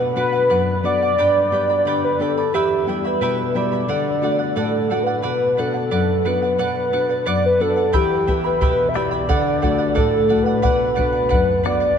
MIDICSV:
0, 0, Header, 1, 5, 480
1, 0, Start_track
1, 0, Key_signature, 2, "minor"
1, 0, Tempo, 675676
1, 837, Time_signature, 2, 2, 24, 8
1, 8513, End_track
2, 0, Start_track
2, 0, Title_t, "Charango"
2, 0, Program_c, 0, 24
2, 0, Note_on_c, 0, 71, 70
2, 0, Note_on_c, 0, 74, 74
2, 0, Note_on_c, 0, 78, 80
2, 104, Note_off_c, 0, 71, 0
2, 110, Note_off_c, 0, 74, 0
2, 112, Note_on_c, 0, 71, 56
2, 113, Note_off_c, 0, 78, 0
2, 118, Note_on_c, 0, 74, 59
2, 121, Note_on_c, 0, 78, 56
2, 221, Note_off_c, 0, 78, 0
2, 230, Note_on_c, 0, 78, 43
2, 234, Note_off_c, 0, 71, 0
2, 234, Note_off_c, 0, 74, 0
2, 243, Note_on_c, 0, 74, 36
2, 347, Note_off_c, 0, 74, 0
2, 352, Note_off_c, 0, 78, 0
2, 353, Note_on_c, 0, 71, 67
2, 356, Note_on_c, 0, 74, 70
2, 360, Note_on_c, 0, 78, 70
2, 587, Note_off_c, 0, 71, 0
2, 596, Note_off_c, 0, 74, 0
2, 596, Note_on_c, 0, 71, 49
2, 598, Note_off_c, 0, 78, 0
2, 604, Note_on_c, 0, 74, 50
2, 610, Note_on_c, 0, 78, 56
2, 716, Note_off_c, 0, 71, 0
2, 718, Note_off_c, 0, 78, 0
2, 720, Note_off_c, 0, 74, 0
2, 727, Note_on_c, 0, 78, 48
2, 738, Note_on_c, 0, 74, 42
2, 837, Note_off_c, 0, 74, 0
2, 840, Note_off_c, 0, 78, 0
2, 840, Note_on_c, 0, 67, 64
2, 843, Note_on_c, 0, 79, 73
2, 848, Note_on_c, 0, 71, 69
2, 848, Note_on_c, 0, 74, 78
2, 850, Note_on_c, 0, 83, 77
2, 1073, Note_off_c, 0, 79, 0
2, 1079, Note_off_c, 0, 67, 0
2, 1080, Note_off_c, 0, 71, 0
2, 1082, Note_on_c, 0, 79, 55
2, 1083, Note_off_c, 0, 74, 0
2, 1084, Note_off_c, 0, 83, 0
2, 1089, Note_on_c, 0, 71, 54
2, 1091, Note_on_c, 0, 74, 52
2, 1095, Note_on_c, 0, 83, 60
2, 1196, Note_off_c, 0, 83, 0
2, 1200, Note_off_c, 0, 79, 0
2, 1203, Note_off_c, 0, 71, 0
2, 1203, Note_off_c, 0, 74, 0
2, 1205, Note_on_c, 0, 83, 43
2, 1212, Note_on_c, 0, 74, 38
2, 1214, Note_on_c, 0, 71, 33
2, 1320, Note_off_c, 0, 71, 0
2, 1321, Note_off_c, 0, 83, 0
2, 1325, Note_off_c, 0, 74, 0
2, 1327, Note_on_c, 0, 79, 59
2, 1328, Note_on_c, 0, 67, 59
2, 1328, Note_on_c, 0, 71, 67
2, 1331, Note_on_c, 0, 83, 77
2, 1333, Note_on_c, 0, 74, 63
2, 1557, Note_off_c, 0, 79, 0
2, 1563, Note_off_c, 0, 67, 0
2, 1563, Note_off_c, 0, 71, 0
2, 1565, Note_off_c, 0, 83, 0
2, 1566, Note_off_c, 0, 74, 0
2, 1566, Note_on_c, 0, 79, 48
2, 1571, Note_on_c, 0, 71, 51
2, 1575, Note_on_c, 0, 74, 53
2, 1576, Note_on_c, 0, 83, 54
2, 1679, Note_off_c, 0, 83, 0
2, 1682, Note_off_c, 0, 79, 0
2, 1684, Note_off_c, 0, 74, 0
2, 1685, Note_off_c, 0, 71, 0
2, 1688, Note_on_c, 0, 83, 41
2, 1692, Note_on_c, 0, 74, 42
2, 1695, Note_on_c, 0, 71, 35
2, 1796, Note_off_c, 0, 71, 0
2, 1803, Note_off_c, 0, 83, 0
2, 1804, Note_on_c, 0, 71, 66
2, 1806, Note_off_c, 0, 74, 0
2, 1808, Note_on_c, 0, 79, 70
2, 1809, Note_on_c, 0, 64, 73
2, 1811, Note_on_c, 0, 83, 76
2, 1812, Note_on_c, 0, 76, 75
2, 2038, Note_off_c, 0, 79, 0
2, 2042, Note_off_c, 0, 64, 0
2, 2042, Note_off_c, 0, 71, 0
2, 2043, Note_off_c, 0, 76, 0
2, 2045, Note_off_c, 0, 83, 0
2, 2046, Note_on_c, 0, 79, 49
2, 2051, Note_on_c, 0, 64, 53
2, 2052, Note_on_c, 0, 76, 52
2, 2054, Note_on_c, 0, 83, 58
2, 2155, Note_off_c, 0, 83, 0
2, 2161, Note_off_c, 0, 76, 0
2, 2163, Note_off_c, 0, 79, 0
2, 2164, Note_on_c, 0, 83, 49
2, 2165, Note_off_c, 0, 64, 0
2, 2170, Note_on_c, 0, 76, 38
2, 2174, Note_on_c, 0, 64, 36
2, 2278, Note_off_c, 0, 64, 0
2, 2281, Note_off_c, 0, 76, 0
2, 2282, Note_off_c, 0, 83, 0
2, 2282, Note_on_c, 0, 71, 63
2, 2286, Note_on_c, 0, 79, 65
2, 2287, Note_on_c, 0, 64, 69
2, 2289, Note_on_c, 0, 76, 68
2, 2292, Note_on_c, 0, 83, 77
2, 2515, Note_off_c, 0, 79, 0
2, 2519, Note_off_c, 0, 64, 0
2, 2520, Note_off_c, 0, 76, 0
2, 2521, Note_off_c, 0, 71, 0
2, 2523, Note_off_c, 0, 83, 0
2, 2524, Note_on_c, 0, 79, 50
2, 2527, Note_on_c, 0, 64, 51
2, 2528, Note_on_c, 0, 76, 53
2, 2532, Note_on_c, 0, 83, 54
2, 2632, Note_off_c, 0, 83, 0
2, 2639, Note_off_c, 0, 76, 0
2, 2641, Note_on_c, 0, 83, 43
2, 2642, Note_off_c, 0, 79, 0
2, 2644, Note_off_c, 0, 64, 0
2, 2647, Note_on_c, 0, 76, 39
2, 2651, Note_on_c, 0, 64, 39
2, 2756, Note_off_c, 0, 76, 0
2, 2759, Note_on_c, 0, 69, 68
2, 2761, Note_off_c, 0, 83, 0
2, 2764, Note_on_c, 0, 74, 69
2, 2766, Note_off_c, 0, 64, 0
2, 2767, Note_on_c, 0, 78, 70
2, 2994, Note_off_c, 0, 69, 0
2, 3000, Note_off_c, 0, 74, 0
2, 3002, Note_on_c, 0, 69, 48
2, 3004, Note_off_c, 0, 78, 0
2, 3009, Note_on_c, 0, 74, 57
2, 3012, Note_on_c, 0, 78, 57
2, 3109, Note_off_c, 0, 78, 0
2, 3117, Note_on_c, 0, 78, 40
2, 3118, Note_off_c, 0, 74, 0
2, 3122, Note_off_c, 0, 69, 0
2, 3127, Note_on_c, 0, 74, 40
2, 3235, Note_off_c, 0, 74, 0
2, 3236, Note_off_c, 0, 78, 0
2, 3237, Note_on_c, 0, 69, 63
2, 3245, Note_on_c, 0, 74, 71
2, 3245, Note_on_c, 0, 78, 71
2, 3473, Note_off_c, 0, 69, 0
2, 3479, Note_off_c, 0, 74, 0
2, 3481, Note_on_c, 0, 69, 48
2, 3484, Note_off_c, 0, 78, 0
2, 3487, Note_on_c, 0, 74, 53
2, 3492, Note_on_c, 0, 78, 60
2, 3589, Note_off_c, 0, 78, 0
2, 3595, Note_off_c, 0, 74, 0
2, 3597, Note_on_c, 0, 78, 47
2, 3601, Note_off_c, 0, 69, 0
2, 3604, Note_on_c, 0, 74, 40
2, 3708, Note_off_c, 0, 74, 0
2, 3711, Note_off_c, 0, 78, 0
2, 3711, Note_on_c, 0, 71, 65
2, 3718, Note_on_c, 0, 74, 65
2, 3719, Note_on_c, 0, 78, 78
2, 3949, Note_off_c, 0, 71, 0
2, 3957, Note_off_c, 0, 74, 0
2, 3958, Note_on_c, 0, 71, 50
2, 3961, Note_off_c, 0, 78, 0
2, 3966, Note_on_c, 0, 74, 55
2, 3971, Note_on_c, 0, 78, 63
2, 4067, Note_off_c, 0, 78, 0
2, 4076, Note_on_c, 0, 78, 44
2, 4080, Note_off_c, 0, 71, 0
2, 4080, Note_off_c, 0, 74, 0
2, 4089, Note_on_c, 0, 74, 38
2, 4193, Note_off_c, 0, 74, 0
2, 4199, Note_off_c, 0, 78, 0
2, 4200, Note_on_c, 0, 71, 67
2, 4201, Note_on_c, 0, 74, 66
2, 4208, Note_on_c, 0, 78, 66
2, 4431, Note_off_c, 0, 71, 0
2, 4435, Note_off_c, 0, 74, 0
2, 4439, Note_off_c, 0, 78, 0
2, 4440, Note_on_c, 0, 71, 52
2, 4443, Note_on_c, 0, 74, 53
2, 4448, Note_on_c, 0, 78, 63
2, 4553, Note_off_c, 0, 78, 0
2, 4561, Note_off_c, 0, 71, 0
2, 4562, Note_on_c, 0, 78, 44
2, 4563, Note_off_c, 0, 74, 0
2, 4573, Note_on_c, 0, 74, 42
2, 4674, Note_off_c, 0, 74, 0
2, 4675, Note_off_c, 0, 78, 0
2, 4678, Note_on_c, 0, 71, 65
2, 4683, Note_on_c, 0, 74, 74
2, 4684, Note_on_c, 0, 78, 85
2, 4913, Note_off_c, 0, 71, 0
2, 4915, Note_off_c, 0, 74, 0
2, 4919, Note_off_c, 0, 78, 0
2, 4921, Note_on_c, 0, 71, 47
2, 4924, Note_on_c, 0, 74, 61
2, 4928, Note_on_c, 0, 78, 59
2, 5031, Note_off_c, 0, 78, 0
2, 5039, Note_off_c, 0, 74, 0
2, 5039, Note_on_c, 0, 78, 49
2, 5042, Note_off_c, 0, 71, 0
2, 5048, Note_on_c, 0, 74, 40
2, 5151, Note_off_c, 0, 74, 0
2, 5155, Note_off_c, 0, 78, 0
2, 5155, Note_on_c, 0, 71, 68
2, 5160, Note_on_c, 0, 74, 81
2, 5164, Note_on_c, 0, 78, 74
2, 5394, Note_off_c, 0, 71, 0
2, 5397, Note_off_c, 0, 74, 0
2, 5402, Note_off_c, 0, 78, 0
2, 5402, Note_on_c, 0, 71, 50
2, 5405, Note_on_c, 0, 74, 56
2, 5410, Note_on_c, 0, 78, 59
2, 5505, Note_off_c, 0, 78, 0
2, 5513, Note_on_c, 0, 78, 44
2, 5514, Note_off_c, 0, 74, 0
2, 5522, Note_on_c, 0, 74, 39
2, 5523, Note_off_c, 0, 71, 0
2, 5628, Note_off_c, 0, 74, 0
2, 5631, Note_on_c, 0, 67, 68
2, 5632, Note_off_c, 0, 78, 0
2, 5635, Note_on_c, 0, 64, 80
2, 5635, Note_on_c, 0, 79, 80
2, 5637, Note_on_c, 0, 76, 73
2, 5638, Note_on_c, 0, 83, 74
2, 5869, Note_off_c, 0, 79, 0
2, 5872, Note_off_c, 0, 64, 0
2, 5874, Note_off_c, 0, 76, 0
2, 5877, Note_off_c, 0, 67, 0
2, 5877, Note_on_c, 0, 79, 60
2, 5878, Note_off_c, 0, 83, 0
2, 5880, Note_on_c, 0, 64, 58
2, 5882, Note_on_c, 0, 76, 56
2, 5886, Note_on_c, 0, 83, 59
2, 5988, Note_off_c, 0, 83, 0
2, 5996, Note_off_c, 0, 76, 0
2, 5996, Note_on_c, 0, 83, 47
2, 5999, Note_off_c, 0, 64, 0
2, 6000, Note_off_c, 0, 79, 0
2, 6004, Note_on_c, 0, 76, 41
2, 6007, Note_on_c, 0, 64, 42
2, 6113, Note_off_c, 0, 83, 0
2, 6114, Note_off_c, 0, 64, 0
2, 6114, Note_off_c, 0, 76, 0
2, 6118, Note_on_c, 0, 67, 71
2, 6118, Note_on_c, 0, 79, 63
2, 6122, Note_on_c, 0, 64, 66
2, 6122, Note_on_c, 0, 83, 70
2, 6123, Note_on_c, 0, 76, 72
2, 6343, Note_off_c, 0, 79, 0
2, 6349, Note_off_c, 0, 64, 0
2, 6351, Note_on_c, 0, 79, 56
2, 6352, Note_off_c, 0, 76, 0
2, 6357, Note_off_c, 0, 83, 0
2, 6358, Note_on_c, 0, 64, 54
2, 6360, Note_off_c, 0, 67, 0
2, 6361, Note_on_c, 0, 76, 58
2, 6365, Note_on_c, 0, 83, 58
2, 6464, Note_off_c, 0, 83, 0
2, 6468, Note_off_c, 0, 76, 0
2, 6472, Note_on_c, 0, 83, 46
2, 6474, Note_off_c, 0, 64, 0
2, 6477, Note_off_c, 0, 79, 0
2, 6477, Note_on_c, 0, 76, 45
2, 6482, Note_on_c, 0, 64, 38
2, 6595, Note_off_c, 0, 76, 0
2, 6597, Note_off_c, 0, 83, 0
2, 6598, Note_on_c, 0, 69, 73
2, 6599, Note_on_c, 0, 74, 86
2, 6602, Note_off_c, 0, 64, 0
2, 6602, Note_on_c, 0, 78, 81
2, 6825, Note_off_c, 0, 69, 0
2, 6827, Note_off_c, 0, 74, 0
2, 6832, Note_off_c, 0, 78, 0
2, 6834, Note_on_c, 0, 69, 57
2, 6836, Note_on_c, 0, 74, 57
2, 6840, Note_on_c, 0, 78, 56
2, 6942, Note_off_c, 0, 78, 0
2, 6950, Note_on_c, 0, 78, 49
2, 6951, Note_off_c, 0, 74, 0
2, 6956, Note_off_c, 0, 69, 0
2, 6959, Note_on_c, 0, 74, 41
2, 7062, Note_off_c, 0, 74, 0
2, 7065, Note_off_c, 0, 78, 0
2, 7066, Note_on_c, 0, 69, 70
2, 7070, Note_on_c, 0, 74, 69
2, 7074, Note_on_c, 0, 78, 73
2, 7299, Note_off_c, 0, 69, 0
2, 7305, Note_off_c, 0, 74, 0
2, 7307, Note_on_c, 0, 69, 50
2, 7310, Note_off_c, 0, 78, 0
2, 7313, Note_on_c, 0, 74, 57
2, 7318, Note_on_c, 0, 78, 61
2, 7422, Note_off_c, 0, 78, 0
2, 7430, Note_on_c, 0, 78, 46
2, 7431, Note_off_c, 0, 74, 0
2, 7434, Note_off_c, 0, 69, 0
2, 7439, Note_on_c, 0, 74, 38
2, 7542, Note_off_c, 0, 74, 0
2, 7543, Note_off_c, 0, 78, 0
2, 7546, Note_on_c, 0, 71, 73
2, 7551, Note_on_c, 0, 74, 74
2, 7552, Note_on_c, 0, 78, 81
2, 7772, Note_off_c, 0, 71, 0
2, 7777, Note_off_c, 0, 74, 0
2, 7781, Note_on_c, 0, 71, 58
2, 7783, Note_off_c, 0, 78, 0
2, 7786, Note_on_c, 0, 74, 61
2, 7792, Note_on_c, 0, 78, 59
2, 7895, Note_off_c, 0, 78, 0
2, 7903, Note_on_c, 0, 78, 50
2, 7907, Note_off_c, 0, 74, 0
2, 7911, Note_off_c, 0, 71, 0
2, 7916, Note_on_c, 0, 74, 38
2, 8013, Note_off_c, 0, 74, 0
2, 8021, Note_off_c, 0, 78, 0
2, 8021, Note_on_c, 0, 71, 68
2, 8021, Note_on_c, 0, 74, 68
2, 8030, Note_on_c, 0, 78, 77
2, 8257, Note_off_c, 0, 71, 0
2, 8264, Note_off_c, 0, 74, 0
2, 8265, Note_on_c, 0, 71, 59
2, 8269, Note_off_c, 0, 78, 0
2, 8273, Note_on_c, 0, 74, 53
2, 8278, Note_on_c, 0, 78, 63
2, 8377, Note_off_c, 0, 78, 0
2, 8385, Note_on_c, 0, 78, 53
2, 8387, Note_off_c, 0, 74, 0
2, 8392, Note_off_c, 0, 71, 0
2, 8395, Note_on_c, 0, 74, 45
2, 8501, Note_off_c, 0, 74, 0
2, 8503, Note_off_c, 0, 78, 0
2, 8513, End_track
3, 0, Start_track
3, 0, Title_t, "Soft synth lead"
3, 0, Program_c, 1, 80
3, 0, Note_on_c, 1, 71, 91
3, 113, Note_off_c, 1, 71, 0
3, 124, Note_on_c, 1, 71, 97
3, 572, Note_off_c, 1, 71, 0
3, 603, Note_on_c, 1, 74, 98
3, 1293, Note_off_c, 1, 74, 0
3, 1328, Note_on_c, 1, 74, 87
3, 1435, Note_off_c, 1, 74, 0
3, 1453, Note_on_c, 1, 71, 81
3, 1558, Note_off_c, 1, 71, 0
3, 1572, Note_on_c, 1, 69, 85
3, 1806, Note_on_c, 1, 67, 84
3, 1817, Note_off_c, 1, 69, 0
3, 2179, Note_on_c, 1, 71, 89
3, 2190, Note_off_c, 1, 67, 0
3, 2528, Note_off_c, 1, 71, 0
3, 2532, Note_on_c, 1, 74, 96
3, 3219, Note_off_c, 1, 74, 0
3, 3253, Note_on_c, 1, 69, 75
3, 3574, Note_on_c, 1, 71, 88
3, 3585, Note_off_c, 1, 69, 0
3, 3976, Note_on_c, 1, 69, 85
3, 3987, Note_off_c, 1, 71, 0
3, 4458, Note_on_c, 1, 71, 85
3, 4469, Note_off_c, 1, 69, 0
3, 5160, Note_off_c, 1, 71, 0
3, 5165, Note_on_c, 1, 74, 92
3, 5276, Note_off_c, 1, 74, 0
3, 5300, Note_on_c, 1, 71, 82
3, 5407, Note_on_c, 1, 69, 89
3, 5418, Note_off_c, 1, 71, 0
3, 5653, Note_on_c, 1, 67, 97
3, 5663, Note_off_c, 1, 69, 0
3, 6011, Note_on_c, 1, 71, 97
3, 6022, Note_off_c, 1, 67, 0
3, 6314, Note_on_c, 1, 76, 71
3, 6325, Note_off_c, 1, 71, 0
3, 6365, Note_on_c, 1, 74, 103
3, 6376, Note_off_c, 1, 76, 0
3, 7083, Note_off_c, 1, 74, 0
3, 7089, Note_on_c, 1, 69, 83
3, 7411, Note_on_c, 1, 71, 92
3, 7422, Note_off_c, 1, 69, 0
3, 7801, Note_off_c, 1, 71, 0
3, 7805, Note_on_c, 1, 71, 103
3, 8253, Note_off_c, 1, 71, 0
3, 8293, Note_on_c, 1, 74, 108
3, 8513, Note_off_c, 1, 74, 0
3, 8513, End_track
4, 0, Start_track
4, 0, Title_t, "Nylon-string guitar"
4, 0, Program_c, 2, 24
4, 0, Note_on_c, 2, 47, 63
4, 111, Note_on_c, 2, 59, 39
4, 116, Note_on_c, 2, 62, 36
4, 118, Note_on_c, 2, 66, 45
4, 339, Note_off_c, 2, 47, 0
4, 355, Note_on_c, 2, 42, 57
4, 498, Note_off_c, 2, 59, 0
4, 500, Note_off_c, 2, 62, 0
4, 502, Note_off_c, 2, 66, 0
4, 591, Note_on_c, 2, 59, 39
4, 595, Note_on_c, 2, 62, 39
4, 600, Note_on_c, 2, 66, 44
4, 785, Note_off_c, 2, 59, 0
4, 788, Note_off_c, 2, 62, 0
4, 791, Note_off_c, 2, 66, 0
4, 822, Note_off_c, 2, 42, 0
4, 838, Note_on_c, 2, 43, 58
4, 1074, Note_on_c, 2, 59, 41
4, 1076, Note_on_c, 2, 62, 36
4, 1081, Note_on_c, 2, 67, 43
4, 1304, Note_off_c, 2, 43, 0
4, 1316, Note_on_c, 2, 50, 55
4, 1460, Note_off_c, 2, 59, 0
4, 1462, Note_off_c, 2, 62, 0
4, 1462, Note_off_c, 2, 67, 0
4, 1555, Note_on_c, 2, 59, 38
4, 1558, Note_on_c, 2, 62, 36
4, 1562, Note_on_c, 2, 67, 45
4, 1749, Note_off_c, 2, 59, 0
4, 1751, Note_off_c, 2, 62, 0
4, 1752, Note_off_c, 2, 67, 0
4, 1783, Note_off_c, 2, 50, 0
4, 1797, Note_on_c, 2, 40, 58
4, 2035, Note_on_c, 2, 55, 37
4, 2038, Note_on_c, 2, 59, 34
4, 2041, Note_on_c, 2, 64, 45
4, 2264, Note_off_c, 2, 40, 0
4, 2280, Note_on_c, 2, 47, 58
4, 2421, Note_off_c, 2, 55, 0
4, 2423, Note_off_c, 2, 59, 0
4, 2425, Note_off_c, 2, 64, 0
4, 2516, Note_on_c, 2, 55, 43
4, 2519, Note_on_c, 2, 59, 36
4, 2523, Note_on_c, 2, 64, 43
4, 2710, Note_off_c, 2, 55, 0
4, 2712, Note_off_c, 2, 59, 0
4, 2713, Note_off_c, 2, 64, 0
4, 2746, Note_off_c, 2, 47, 0
4, 2761, Note_on_c, 2, 50, 59
4, 2994, Note_on_c, 2, 57, 36
4, 2998, Note_on_c, 2, 62, 37
4, 3000, Note_on_c, 2, 66, 44
4, 3227, Note_off_c, 2, 50, 0
4, 3241, Note_on_c, 2, 45, 58
4, 3382, Note_off_c, 2, 57, 0
4, 3383, Note_off_c, 2, 62, 0
4, 3385, Note_off_c, 2, 66, 0
4, 3482, Note_on_c, 2, 57, 41
4, 3485, Note_on_c, 2, 62, 36
4, 3489, Note_on_c, 2, 66, 46
4, 3674, Note_off_c, 2, 57, 0
4, 3676, Note_off_c, 2, 62, 0
4, 3678, Note_off_c, 2, 66, 0
4, 3708, Note_off_c, 2, 45, 0
4, 3722, Note_on_c, 2, 47, 58
4, 3962, Note_on_c, 2, 59, 41
4, 3964, Note_on_c, 2, 62, 36
4, 3970, Note_on_c, 2, 66, 48
4, 4188, Note_off_c, 2, 47, 0
4, 4200, Note_on_c, 2, 42, 57
4, 4347, Note_off_c, 2, 59, 0
4, 4347, Note_off_c, 2, 62, 0
4, 4351, Note_off_c, 2, 66, 0
4, 4441, Note_on_c, 2, 59, 39
4, 4444, Note_on_c, 2, 62, 37
4, 4449, Note_on_c, 2, 66, 43
4, 4634, Note_off_c, 2, 59, 0
4, 4636, Note_off_c, 2, 62, 0
4, 4637, Note_off_c, 2, 66, 0
4, 4667, Note_off_c, 2, 42, 0
4, 4677, Note_on_c, 2, 47, 54
4, 4918, Note_on_c, 2, 59, 37
4, 4920, Note_on_c, 2, 62, 37
4, 4924, Note_on_c, 2, 66, 39
4, 5146, Note_off_c, 2, 47, 0
4, 5160, Note_on_c, 2, 42, 54
4, 5304, Note_off_c, 2, 59, 0
4, 5306, Note_off_c, 2, 62, 0
4, 5307, Note_off_c, 2, 66, 0
4, 5399, Note_on_c, 2, 59, 39
4, 5405, Note_on_c, 2, 62, 36
4, 5408, Note_on_c, 2, 66, 45
4, 5593, Note_off_c, 2, 59, 0
4, 5596, Note_off_c, 2, 62, 0
4, 5598, Note_off_c, 2, 66, 0
4, 5627, Note_off_c, 2, 42, 0
4, 5645, Note_on_c, 2, 52, 61
4, 5881, Note_on_c, 2, 59, 42
4, 5884, Note_on_c, 2, 64, 39
4, 5887, Note_on_c, 2, 67, 43
4, 6109, Note_off_c, 2, 52, 0
4, 6122, Note_on_c, 2, 47, 60
4, 6266, Note_off_c, 2, 59, 0
4, 6268, Note_off_c, 2, 64, 0
4, 6269, Note_off_c, 2, 67, 0
4, 6359, Note_on_c, 2, 59, 39
4, 6361, Note_on_c, 2, 64, 40
4, 6365, Note_on_c, 2, 67, 48
4, 6552, Note_off_c, 2, 59, 0
4, 6554, Note_off_c, 2, 64, 0
4, 6555, Note_off_c, 2, 67, 0
4, 6587, Note_off_c, 2, 47, 0
4, 6602, Note_on_c, 2, 50, 63
4, 6844, Note_on_c, 2, 57, 43
4, 6847, Note_on_c, 2, 62, 38
4, 6850, Note_on_c, 2, 66, 45
4, 7067, Note_off_c, 2, 50, 0
4, 7082, Note_on_c, 2, 45, 66
4, 7227, Note_off_c, 2, 57, 0
4, 7227, Note_off_c, 2, 62, 0
4, 7231, Note_off_c, 2, 66, 0
4, 7318, Note_on_c, 2, 57, 47
4, 7323, Note_on_c, 2, 62, 39
4, 7329, Note_on_c, 2, 66, 51
4, 7511, Note_off_c, 2, 57, 0
4, 7515, Note_off_c, 2, 62, 0
4, 7516, Note_off_c, 2, 66, 0
4, 7547, Note_off_c, 2, 45, 0
4, 7565, Note_on_c, 2, 47, 67
4, 7797, Note_on_c, 2, 59, 41
4, 7800, Note_on_c, 2, 62, 42
4, 7804, Note_on_c, 2, 66, 45
4, 8028, Note_off_c, 2, 47, 0
4, 8042, Note_on_c, 2, 42, 61
4, 8182, Note_off_c, 2, 59, 0
4, 8184, Note_off_c, 2, 62, 0
4, 8184, Note_off_c, 2, 66, 0
4, 8276, Note_on_c, 2, 59, 44
4, 8280, Note_on_c, 2, 62, 40
4, 8284, Note_on_c, 2, 66, 47
4, 8469, Note_off_c, 2, 59, 0
4, 8472, Note_off_c, 2, 62, 0
4, 8473, Note_off_c, 2, 66, 0
4, 8506, Note_off_c, 2, 42, 0
4, 8513, End_track
5, 0, Start_track
5, 0, Title_t, "Bombo"
5, 5640, Note_on_c, 9, 43, 66
5, 5711, Note_off_c, 9, 43, 0
5, 5883, Note_on_c, 9, 43, 54
5, 5954, Note_off_c, 9, 43, 0
5, 6122, Note_on_c, 9, 43, 65
5, 6193, Note_off_c, 9, 43, 0
5, 6361, Note_on_c, 9, 37, 50
5, 6432, Note_off_c, 9, 37, 0
5, 6604, Note_on_c, 9, 43, 65
5, 6675, Note_off_c, 9, 43, 0
5, 6843, Note_on_c, 9, 43, 53
5, 6914, Note_off_c, 9, 43, 0
5, 7084, Note_on_c, 9, 43, 64
5, 7155, Note_off_c, 9, 43, 0
5, 7562, Note_on_c, 9, 43, 63
5, 7633, Note_off_c, 9, 43, 0
5, 7806, Note_on_c, 9, 43, 52
5, 7877, Note_off_c, 9, 43, 0
5, 8042, Note_on_c, 9, 43, 65
5, 8113, Note_off_c, 9, 43, 0
5, 8282, Note_on_c, 9, 37, 54
5, 8353, Note_off_c, 9, 37, 0
5, 8513, End_track
0, 0, End_of_file